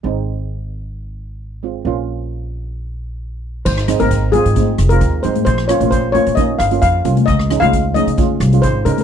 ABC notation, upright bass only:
X:1
M:4/4
L:1/16
Q:1/4=133
K:Ab
V:1 name="Upright bass" clef=bass
A,,,16 | B,,,16 | A,,,3 A,,,4 A,,3 F,,,2 E,,2 A,,2 | B,,,3 B,,,4 B,,3 G,,,2 F,,2 C,,2 |
D,,3 D,,4 D,3 C,,2 A,,,2 D,2 |]